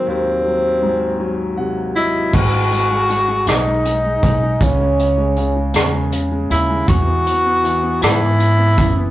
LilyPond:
<<
  \new Staff \with { instrumentName = "Tenor saxophone" } { \time 6/8 \key gis \phrygian \tempo 4. = 53 bis2 r8 e'8 | fis'4. dis'4. | cis'4. r4 e'8 | fis'4. e'4. | }
  \new Staff \with { instrumentName = "Grand piano" } { \clef bass \time 6/8 \key gis \phrygian <dis, dis fis>8 fis8 gis,8 fis8 <bis, fis''>8 <fis dis''>8 | gis16 gis16 gis16 gis16 gis16 gis16 dis'16 gis16 gis16 gis16 gis16 gis16 | cis16 gis16 cis16 gis16 cis16 gis16 cis16 gis16 cis16 gis16 cis16 gis16 | e16 b16 e16 b16 e16 b16 e16 b16 e16 b16 e16 b16 | }
  \new Staff \with { instrumentName = "Upright bass" } { \clef bass \time 6/8 \key gis \phrygian r2. | gis,,4. b,,4 b,,8 | cis,4. e,4 dis,8 | e,4. gis,4 fis,,8 | }
  \new DrumStaff \with { instrumentName = "Drums" } \drummode { \time 6/8 r4. r4. | <cymc bd>8 hh8 hh8 <hh ss>8 hh8 <hh bd>8 | <hh bd>8 hh8 hh8 <hh ss>8 hh8 hh8 | <hh bd>8 hh8 hh8 <hh ss>8 hh8 <hh bd>8 | }
>>